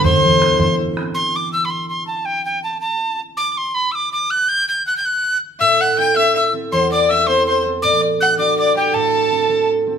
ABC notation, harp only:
X:1
M:6/8
L:1/8
Q:3/8=108
K:Ador
V:1 name="Harp"
A,, E, E E, E C | z6 | z6 | z6 |
z6 | A,,2 [CEA] [CEA]2 [CEA] | E,,2 [CEA] [CEA]2 [CEA] | A,,2 [DFA] [DFA]2 [DFA] |
A,,2 [CEA] [CEA]2 [CEA] |]